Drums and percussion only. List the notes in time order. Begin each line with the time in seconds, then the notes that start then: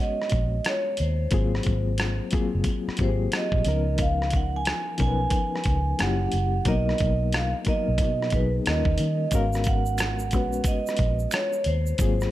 0.22 cross-stick
0.30 kick, closed hi-hat
0.65 cross-stick, closed hi-hat
0.97 closed hi-hat
1.31 kick, closed hi-hat
1.55 cross-stick
1.63 kick, closed hi-hat
1.98 cross-stick, closed hi-hat
2.31 kick, closed hi-hat
2.64 kick, closed hi-hat
2.89 cross-stick
2.97 kick, closed hi-hat
3.32 cross-stick, closed hi-hat
3.52 kick
3.65 closed hi-hat
3.98 kick, closed hi-hat
4.22 cross-stick
4.30 kick, closed hi-hat
4.65 cross-stick, closed hi-hat
4.98 kick, closed hi-hat
5.30 kick, closed hi-hat
5.56 cross-stick
5.64 kick, closed hi-hat
5.99 cross-stick, closed hi-hat
6.32 closed hi-hat
6.65 kick, closed hi-hat
6.89 cross-stick
6.98 kick, closed hi-hat
7.33 cross-stick, closed hi-hat
7.65 kick, closed hi-hat
7.98 kick, closed hi-hat
8.22 cross-stick
8.30 kick, closed hi-hat
8.66 cross-stick, closed hi-hat
8.85 kick
8.98 closed hi-hat
9.31 kick, closed hi-hat, shaker
9.53 cross-stick, shaker
9.64 kick, closed hi-hat, shaker
9.86 shaker
9.98 finger snap, cross-stick, closed hi-hat, shaker
10.19 shaker
10.31 kick, closed hi-hat, shaker
10.53 shaker
10.64 kick, closed hi-hat, shaker
10.87 cross-stick, shaker
10.97 kick, closed hi-hat
11.19 shaker
11.31 finger snap, cross-stick, closed hi-hat, shaker
11.53 shaker
11.64 closed hi-hat
11.86 shaker
11.98 kick, closed hi-hat, shaker
12.20 cross-stick, shaker